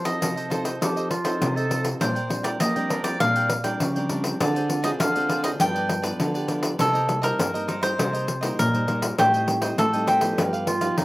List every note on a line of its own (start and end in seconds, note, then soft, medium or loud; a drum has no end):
0.00 0.19 F3 medium
0.04 0.46 C4 medium
0.04 0.47 D#4 medium
0.04 0.47 A4 medium
0.04 0.21 A4 medium
0.04 0.20 C5 medium
0.04 0.19 D#5 medium
0.04 0.62 D#5 medium
0.04 pandeiro medium
0.21 0.79 C3 medium
0.21 0.72 F3 medium
0.21 0.35 F4 soft
0.21 0.36 A4 medium
0.21 0.36 C5 soft
0.21 0.35 D#5 soft
0.21 pandeiro medium
0.36 0.50 A4 medium
0.36 0.51 C5 medium
0.36 0.50 D#5 medium
0.36 pandeiro soft
0.50 0.69 C4 medium
0.50 0.69 D#4 medium
0.50 0.65 F4 medium
0.50 0.65 A4 medium
0.50 0.69 A4 medium
0.50 0.64 C5 medium
0.50 0.63 D#5 medium
0.50 pandeiro medium
0.64 0.81 A4 medium
0.64 0.80 C5 medium
0.64 0.79 D#5 medium
0.64 pandeiro medium
0.81 1.38 F3 medium
0.81 1.10 C4 medium
0.81 1.10 D#4 medium
0.81 0.95 F4 medium
0.81 1.09 G4 medium
0.81 0.96 A4 medium
0.81 1.10 A4 medium
0.81 0.96 C5 medium
0.81 0.95 D#5 medium
0.81 pandeiro medium
0.96 1.10 A4 medium
0.96 1.10 C5 medium
0.96 1.10 D#5 medium
0.96 pandeiro soft
1.10 1.57 F4 medium
1.10 muted cavaquinho stroke soft
1.10 pandeiro medium
1.24 1.66 C4 medium
1.24 1.66 D#4 medium
1.24 1.66 A4 medium
1.24 1.55 A4 medium
1.24 1.55 C5 medium
1.24 1.54 D#5 medium
1.24 pandeiro medium
1.41 1.98 C3 medium
1.41 pandeiro medium
1.56 1.86 A4 medium
1.56 1.69 A4 medium
1.56 1.70 C5 medium
1.56 1.70 D#5 medium
1.56 pandeiro soft
1.69 1.88 C4 medium
1.69 1.88 D#4 medium
1.69 1.99 F4 soft
1.69 2.00 A4 soft
1.69 1.89 A4 medium
1.69 2.00 C5 medium
1.69 2.00 D#5 medium
1.69 pandeiro medium
1.85 pandeiro medium
2.00 2.58 A#2 medium
2.00 2.19 G3 medium
2.00 2.19 C4 medium
2.00 2.14 D4 medium
2.00 2.19 D4 medium
2.00 2.15 A#4 soft
2.00 2.43 C5 medium
2.00 2.15 D5 medium
2.00 2.14 G5 medium
2.00 pandeiro medium
2.15 2.29 A#4 medium
2.15 2.29 D5 medium
2.15 2.29 G5 medium
2.15 pandeiro soft
2.29 2.58 G3 medium
2.29 2.59 C4 medium
2.29 2.59 D4 medium
2.29 muted cavaquinho stroke soft
2.29 pandeiro medium
2.43 2.60 A#4 medium
2.43 2.49 D5 medium
2.43 2.59 D5 medium
2.43 2.59 G5 medium
2.43 pandeiro medium
2.60 3.17 F3 medium
2.60 3.12 A#3 medium
2.60 2.74 D4 soft
2.60 2.75 A#4 soft
2.60 2.75 D5 medium
2.60 3.02 D#5 medium
2.60 2.75 G5 soft
2.60 pandeiro medium
2.76 3.01 G3 medium
2.76 3.01 C4 medium
2.76 3.01 D4 medium
2.76 2.89 A#4 medium
2.76 2.90 D5 medium
2.76 2.90 G5 medium
2.76 pandeiro soft
2.90 3.04 D4 medium
2.90 3.04 A#4 medium
2.90 3.04 D5 medium
2.90 3.03 G5 medium
2.90 pandeiro medium
3.03 3.15 G3 medium
3.03 3.15 C4 medium
3.03 3.15 D4 medium
3.03 3.20 A#4 medium
3.03 3.19 D5 medium
3.03 3.19 G5 medium
3.03 pandeiro medium
3.20 3.77 A#2 medium
3.20 3.61 G3 medium
3.20 3.61 C4 medium
3.20 3.34 D4 medium
3.20 3.61 D4 medium
3.20 3.35 A#4 medium
3.20 3.35 D5 medium
3.20 3.62 F5 medium
3.20 3.35 G5 medium
3.20 pandeiro medium
3.36 3.49 A#4 medium
3.36 3.50 D5 medium
3.36 3.50 G5 medium
3.36 pandeiro soft
3.50 muted cavaquinho stroke soft
3.50 pandeiro medium
3.64 3.90 G3 medium
3.64 3.90 C4 medium
3.64 3.90 D4 medium
3.64 3.95 A#4 medium
3.64 3.94 D5 medium
3.64 3.93 G5 medium
3.64 pandeiro medium
3.80 4.31 C#3 loud
3.80 4.37 F3 medium
3.80 pandeiro medium
3.95 4.06 G3 medium
3.95 4.06 C4 medium
3.95 4.07 D4 medium
3.95 4.09 A#4 soft
3.95 4.10 D5 medium
3.95 4.09 G5 medium
3.95 pandeiro soft
4.09 4.38 G3 medium
4.09 4.38 C4 medium
4.09 4.39 D4 soft
4.09 4.38 D4 medium
4.09 4.39 A#4 soft
4.09 4.40 D5 medium
4.09 4.40 G5 medium
4.09 pandeiro medium
4.24 pandeiro medium
4.40 4.98 D3 medium
4.40 4.58 G#3 medium
4.40 4.59 C4 medium
4.40 4.54 F4 soft
4.40 4.59 F4 medium
4.40 4.54 G#4 soft
4.40 4.55 C5 soft
4.40 4.87 D5 medium
4.40 4.54 D5 medium
4.40 pandeiro medium
4.55 4.69 G#4 medium
4.55 4.69 C5 medium
4.55 4.69 D5 medium
4.55 pandeiro soft
4.69 4.79 G#3 medium
4.69 4.79 C4 medium
4.69 4.79 F4 medium
4.69 muted cavaquinho stroke soft
4.69 pandeiro medium
4.83 5.10 G#3 medium
4.83 5.10 C4 medium
4.83 5.10 F4 medium
4.83 4.99 G#4 medium
4.83 4.99 C5 medium
4.83 4.98 D5 medium
4.83 4.89 D#5 medium
4.83 pandeiro medium
4.99 5.57 D3 medium
4.99 5.13 F4 medium
4.99 5.14 C5 medium
4.99 5.14 D5 medium
4.99 5.42 F5 medium
4.99 pandeiro medium
5.15 5.56 G#3 medium
5.15 5.56 C4 medium
5.15 5.56 F4 medium
5.15 5.28 G#4 medium
5.15 5.30 C5 medium
5.15 5.29 D5 medium
5.15 pandeiro soft
5.29 5.43 F4 medium
5.29 5.44 G#4 medium
5.29 5.43 C5 medium
5.29 5.41 D5 medium
5.29 pandeiro medium
5.42 5.59 G#4 medium
5.42 5.58 C5 medium
5.42 5.58 D5 medium
5.42 5.49 D#5 medium
5.42 pandeiro medium
5.59 6.17 G2 medium
5.59 6.00 F3 medium
5.59 6.00 B3 medium
5.59 6.01 D4 medium
5.59 5.73 F4 medium
5.59 5.74 G4 medium
5.59 5.74 B4 medium
5.59 5.73 D5 medium
5.59 6.02 G5 loud
5.59 pandeiro medium
5.75 5.88 G4 medium
5.75 5.88 B4 medium
5.75 5.89 D5 medium
5.75 pandeiro soft
5.89 muted cavaquinho stroke soft
5.89 pandeiro medium
6.02 6.45 F3 medium
6.02 6.45 B3 medium
6.02 6.45 D4 medium
6.02 6.34 G4 medium
6.02 6.33 B4 medium
6.02 6.32 D5 medium
6.02 pandeiro medium
6.20 6.77 D3 medium
6.20 pandeiro medium
6.34 6.47 G4 medium
6.34 6.48 B4 medium
6.34 6.48 D5 medium
6.34 pandeiro soft
6.48 6.77 F3 medium
6.48 6.77 B3 medium
6.48 6.77 D4 medium
6.48 6.77 F4 soft
6.48 6.78 G4 medium
6.48 6.78 B4 soft
6.48 6.79 D5 medium
6.48 pandeiro medium
6.63 pandeiro medium
6.78 7.37 C3 medium
6.78 6.97 G3 medium
6.78 6.97 A#3 medium
6.78 6.93 D#4 soft
6.78 6.98 D#4 medium
6.78 7.22 A4 loud
6.78 6.93 A#4 medium
6.78 6.94 C5 medium
6.78 6.92 D#5 medium
6.78 pandeiro medium
6.93 7.07 A#4 medium
6.93 7.08 C5 medium
6.93 7.08 D#5 medium
6.93 pandeiro soft
7.08 7.18 G3 medium
7.08 7.18 A#3 medium
7.08 7.19 D#4 medium
7.08 muted cavaquinho stroke soft
7.08 pandeiro medium
7.22 7.49 G3 medium
7.22 7.49 A#3 medium
7.22 7.49 D#4 medium
7.22 7.80 A#4 medium
7.22 7.38 A#4 medium
7.22 7.38 C5 medium
7.22 7.37 D#5 medium
7.22 pandeiro medium
7.38 7.96 G2 medium
7.38 7.90 C4 medium
7.38 7.53 D#4 medium
7.38 7.53 A#4 medium
7.38 7.53 C5 medium
7.38 7.53 D#5 medium
7.38 pandeiro medium
7.54 7.80 G3 medium
7.54 7.80 A#3 medium
7.54 7.80 D#4 medium
7.54 7.67 A#4 medium
7.54 7.68 C5 medium
7.54 7.68 D#5 medium
7.54 pandeiro soft
7.68 7.82 D#4 medium
7.68 7.83 A#4 medium
7.68 7.81 C5 medium
7.68 7.80 D#5 medium
7.68 pandeiro medium
7.81 7.93 G3 medium
7.81 7.94 A#3 medium
7.81 7.94 D#4 medium
7.81 7.98 A#4 medium
7.81 8.60 C5 loud
7.81 7.97 C5 medium
7.81 7.97 D#5 medium
7.81 pandeiro medium
7.98 8.56 C3 medium
7.98 8.27 G3 medium
7.98 8.27 A#3 medium
7.98 8.12 D#4 medium
7.98 8.28 D#4 medium
7.98 8.13 A#4 medium
7.98 8.13 C5 medium
7.98 8.12 D#5 medium
7.98 pandeiro medium
8.13 8.26 A#4 medium
8.13 8.27 C5 medium
8.13 8.27 D#5 medium
8.13 pandeiro soft
8.27 muted cavaquinho stroke soft
8.27 pandeiro medium
8.41 8.68 G3 medium
8.41 8.68 A#3 medium
8.41 8.69 D#4 medium
8.41 8.72 A#4 medium
8.41 8.72 C5 medium
8.41 8.71 D#5 medium
8.41 pandeiro medium
8.59 9.16 G2 medium
8.59 9.10 A#2 loud
8.59 9.15 A#4 medium
8.59 pandeiro medium
8.74 8.84 G3 medium
8.74 8.84 A#3 medium
8.74 8.84 D#4 medium
8.74 8.87 A#4 medium
8.74 8.88 C5 medium
8.74 8.87 D#5 medium
8.74 pandeiro soft
8.87 9.16 G3 medium
8.87 9.16 A#3 medium
8.87 9.17 D#4 soft
8.87 9.16 D#4 medium
8.87 9.17 A#4 soft
8.87 9.17 C5 soft
8.87 9.18 D#5 medium
8.87 pandeiro medium
9.02 pandeiro medium
9.18 9.75 A2 medium
9.18 9.43 G3 medium
9.18 9.44 C4 medium
9.18 9.44 D#4 medium
9.18 9.75 G4 medium
9.18 9.32 A4 soft
9.18 9.32 C5 medium
9.18 9.33 D#5 medium
9.18 9.32 G5 medium
9.18 pandeiro medium
9.34 9.46 C5 medium
9.34 9.47 D#5 medium
9.34 9.47 G5 medium
9.34 pandeiro soft
9.47 9.57 G3 medium
9.47 9.57 C4 medium
9.47 9.58 D#4 medium
9.47 muted cavaquinho stroke soft
9.47 pandeiro medium
9.61 9.88 G3 medium
9.61 9.88 C4 medium
9.61 9.88 D#4 medium
9.61 9.77 C5 medium
9.61 9.77 D#5 medium
9.61 9.76 G5 medium
9.61 pandeiro medium
9.78 10.35 A2 medium
9.78 10.29 A3 medium
9.78 9.92 A4 medium
9.78 10.06 A4 medium
9.78 9.92 C5 soft
9.78 9.93 D#5 medium
9.78 9.92 G5 medium
9.78 pandeiro medium
9.93 10.19 G3 medium
9.93 10.19 C4 medium
9.93 10.19 D#4 medium
9.93 10.07 C5 medium
9.93 10.07 D#5 medium
9.93 10.07 G5 medium
9.93 pandeiro soft
10.07 10.94 G4 medium
10.07 10.21 A4 medium
10.07 10.22 C5 medium
10.07 10.21 D#5 medium
10.07 10.20 G5 medium
10.07 pandeiro medium
10.21 10.78 F3 medium
10.21 10.78 B3 medium
10.21 10.78 D#4 medium
10.21 10.37 C5 medium
10.21 10.36 D#5 medium
10.21 10.36 G5 medium
10.21 pandeiro medium
10.37 10.95 G2 medium
10.37 10.51 D#4 medium
10.37 10.52 G4 medium
10.37 10.52 B4 medium
10.37 10.52 F5 medium
10.37 pandeiro medium
10.53 10.66 G4 medium
10.53 10.67 B4 medium
10.53 10.67 F5 medium
10.53 pandeiro soft
10.67 10.99 F4 loud
10.67 muted cavaquinho stroke soft
10.67 pandeiro medium
10.81 11.05 F3 medium
10.81 11.05 B3 medium
10.81 11.05 D#4 medium
10.81 11.05 G4 medium
10.81 11.05 B4 medium
10.81 11.05 F5 medium
10.81 pandeiro medium
10.98 11.05 G2 medium
10.98 11.05 D#3 medium
10.98 11.05 D#4 medium
10.98 pandeiro medium